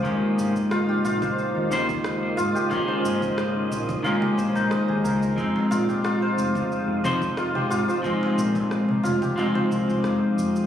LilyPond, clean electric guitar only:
\new Staff \with { instrumentName = "Clean electric guitar" } { \time 4/4 \key f \minor \tempo 4 = 90 <ees aes bes des'>2~ <ees aes bes des'>8 <ees bes des' c''>16 r4 r16 | <ees aes bes des'>2 <ees aes bes des'>2 | <f aes c' ees'>2~ <f aes c' ees'>8 <f c' ees' c''>16 r4 r16 | <f aes c' ees'>2 <f aes c' ees'>2 | }